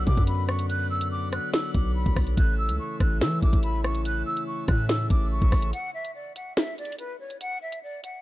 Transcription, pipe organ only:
Already playing: D3 F#3 B3 F#4
2.37 C#3 E3 A3 E4

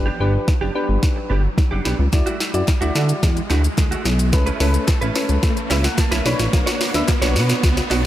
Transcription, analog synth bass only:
Already playing: G1
0.20 G1
0.62 F#1
0.89 G1
1.30 G1
1.72 F#1
1.86 B1
1.99 C#2
2.13 D2
2.54 F#2
2.81 D2
2.95 D3
3.23 E2
3.50 D2
3.78 D2
4.05 B1
4.33 C#2
4.60 C#2
5.02 A1
5.29 C#2
5.71 C#2
6.12 B1
6.25 B1
6.39 A1
6.53 B1
6.94 D2
7.22 B1
7.36 B2
7.63 C#2
7.91 B1

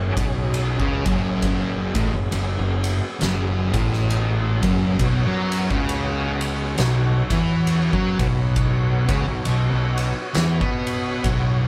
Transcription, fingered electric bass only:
Already playing: F#1
0.17 B1
0.80 C#2
1.06 F#1
1.95 A1
2.13 F#1
2.32 F#1
2.58 F#1
3.22 F#1
3.74 A1
4.63 F#1
5.00 B1
5.26 F#2
5.71 C#2
6.79 B1
7.30 E2
7.93 F#2
8.20 B1
9.08 C#2
9.28 B1
9.46 B1
9.73 B1
10.36 E2
10.61 B2
11.24 B1

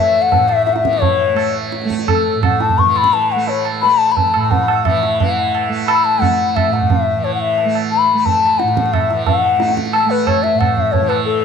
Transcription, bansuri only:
Already playing: E5
0.22 F#5
0.48 E5
0.65 E5
0.73 E5 F#5
1.01 C#5
2.08 A4
2.43 F#5
2.61 A5
2.78 C#6
2.92 C#6
2.97 B5
3.14 A5
3.32 F#5
3.48 C#5
3.82 B5
3.99 A5
4.12 B5
4.16 A5
4.45 A5
4.51 F#5
4.85 E5
5.20 F#5
5.88 B5
6.05 A5
6.21 F#5
6.56 E5
6.73 F#5
6.90 E5
7.24 C#5
7.34 F#5
7.41 E5
7.91 B5
8.20 B5
8.25 A5
8.59 F#5
8.93 E5
9.27 F#5
9.94 A5
10.10 B4
10.27 C#5
10.43 E5
10.59 F#5
10.76 E5
10.92 C#5
11.09 B4
11.25 A4

